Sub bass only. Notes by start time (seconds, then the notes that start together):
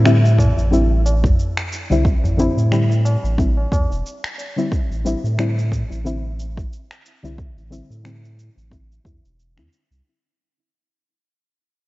Already playing: A2
0.57 A1
1.91 C2
2.24 A1
2.57 A2
3.24 A1
3.72 E2
3.91 E1
4.90 A1
5.24 A2
5.91 A1
7.24 C2
7.57 A1
7.90 A2
8.57 A1
9.05 E2
9.24 E1
9.58 E2
9.91 C2